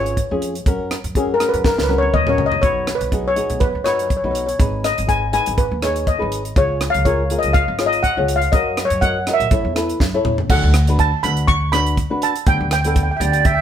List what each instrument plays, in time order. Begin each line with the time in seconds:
Already playing: upright bass G#1, nylon-string guitar C#4 F4 G#4, steel pan C#5
0.06 closed hi-hat
0.17 kick, closed hi-hat
0.31 upright bass F2, nylon-string guitar C#4 F4 G#4
0.42 closed hi-hat
0.55 closed hi-hat
0.66 upright bass F#2, nylon-string guitar C#4 F#4 A#4, kick, closed hi-hat
0.91 cross-stick, closed hi-hat
1.04 upright bass F#2, closed hi-hat
1.15 nylon-string guitar C#4 F#4 A#4, steel pan G#4, kick, closed hi-hat
1.34 steel pan A#4
1.40 nylon-string guitar C#4 F#4 A#4, cross-stick, closed hi-hat
1.49 steel pan B4
1.54 upright bass F#2, closed hi-hat
1.64 steel pan A#4, kick, snare
1.77 upright bass C#2, snare
1.84 steel pan B4
1.89 nylon-string guitar C#4 F#4 A#4, high tom
1.98 steel pan C#5
2.03 high tom
2.14 upright bass D#2, steel pan D#5, kick, mid tom
2.27 nylon-string guitar C#4 F#4 A#4, steel pan C#5, mid tom
2.38 upright bass C#2, floor tom
2.46 steel pan D#5
2.52 floor tom
2.62 upright bass B1, nylon-string guitar D#4 F#4 B4, steel pan C#5, kick, closed hi-hat
2.87 cross-stick, closed hi-hat
2.95 steel pan B4
3.01 upright bass B1, closed hi-hat
3.12 nylon-string guitar D#4 F#4 G#4, kick, closed hi-hat
3.28 steel pan C#5
3.36 nylon-string guitar D#4 F#4 G#4, closed hi-hat
3.50 upright bass B1, closed hi-hat
3.60 steel pan B4, kick, closed hi-hat
3.75 upright bass F#2
3.84 nylon-string guitar D#4 F#4 B4, steel pan C#5, cross-stick, closed hi-hat
3.94 steel pan C#5
3.99 steel pan C#5, closed hi-hat
4.08 steel pan C#5, kick, closed hi-hat
4.17 steel pan C#5
4.24 upright bass B1, nylon-string guitar D#4 F#4 B4, steel pan C#5
4.31 steel pan C#5
4.35 steel pan C#5, closed hi-hat
4.46 steel pan C#5, closed hi-hat
4.59 upright bass G#1, nylon-string guitar D#4 G#4 B4, kick, closed hi-hat
4.84 steel pan D#5, cross-stick, closed hi-hat
4.98 upright bass G#1, closed hi-hat
5.07 nylon-string guitar D#4 G#4 B4, steel pan G#5, kick, closed hi-hat
5.32 nylon-string guitar D#4 G#4 B4, steel pan G#5, closed hi-hat
5.46 upright bass G#1, closed hi-hat
5.58 steel pan B4, kick, closed hi-hat
5.71 upright bass D#2
5.82 nylon-string guitar D#4 G#4 C#5, steel pan C#5, cross-stick, closed hi-hat
5.96 closed hi-hat
6.07 steel pan D#5, kick, closed hi-hat
6.18 upright bass G#1, nylon-string guitar D#4 G#4 B4
6.32 closed hi-hat
6.45 closed hi-hat
6.56 upright bass C#2, nylon-string guitar F4 G#4 C#5, steel pan C#5, kick, closed hi-hat
6.81 cross-stick, closed hi-hat
6.90 steel pan F5
6.94 upright bass C#2, closed hi-hat
7.05 nylon-string guitar F4 G#4 A#4, steel pan C#5, kick, closed hi-hat
7.30 nylon-string guitar F4 G#4 A#4, closed hi-hat
7.39 steel pan D#5
7.43 upright bass C#2, closed hi-hat
7.53 steel pan F5, kick, closed hi-hat
7.68 upright bass G#1
7.79 nylon-string guitar F4 G#4 C#5, cross-stick, closed hi-hat
7.86 steel pan D#5
7.93 closed hi-hat
8.03 steel pan F#5, kick, closed hi-hat
8.17 upright bass C#2, nylon-string guitar F4 G#4 C#5
8.28 closed hi-hat
8.36 steel pan F5
8.42 closed hi-hat
8.52 upright bass F#2, nylon-string guitar F#4 A#4 C#5, steel pan D#5, kick, closed hi-hat
8.77 cross-stick, closed hi-hat
8.85 steel pan C#5
8.90 upright bass F#2, closed hi-hat
9.01 nylon-string guitar F#4 A#4 D#5, steel pan F#5, kick, closed hi-hat
9.27 nylon-string guitar F#4 A#4 D#5, cross-stick, closed hi-hat
9.33 steel pan E5
9.40 upright bass A#1, closed hi-hat
9.51 upright bass A1, nylon-string guitar E4 A4 C#5, kick, closed hi-hat
9.65 upright bass E2
9.75 nylon-string guitar E4 A4 B4, cross-stick, closed hi-hat
9.89 closed hi-hat
10.00 upright bass F#2, kick, snare
10.14 nylon-string guitar E4 A4 C#5
10.25 upright bass E2, mid tom
10.38 floor tom
10.50 upright bass D2, nylon-string guitar D4 F#4 A4, steel pan F#5, kick, crash
10.63 upright bass D2
10.74 cross-stick, closed hi-hat
10.87 nylon-string guitar D4 F#4 B4, closed hi-hat
10.99 steel pan A5, kick, closed hi-hat
11.23 upright bass D2, nylon-string guitar D4 F#4 B4, steel pan B5, closed hi-hat
11.37 closed hi-hat
11.48 steel pan C#6, kick, closed hi-hat
11.72 nylon-string guitar D4 F#4 B4, steel pan B5, cross-stick, closed hi-hat
11.86 closed hi-hat
11.97 kick, closed hi-hat
12.10 nylon-string guitar D4 F#4 B4
12.22 steel pan A5, closed hi-hat
12.36 closed hi-hat
12.46 upright bass D2, nylon-string guitar B3 D4 G4, steel pan G5, kick, closed hi-hat
12.61 upright bass D2
12.71 steel pan G5, cross-stick, closed hi-hat
12.81 steel pan G5, closed hi-hat
12.85 nylon-string guitar B3 D4 A4, steel pan G5
12.94 steel pan G5, kick, closed hi-hat
13.03 steel pan G5
13.11 steel pan G5
13.15 flute E5, steel pan G5
13.20 upright bass D2, nylon-string guitar B3 D4 G4, flute D5, closed hi-hat
13.25 steel pan G5
13.32 steel pan G5, closed hi-hat
13.41 steel pan G5
13.45 flute E5, steel pan G5, kick, closed hi-hat
13.55 steel pan G5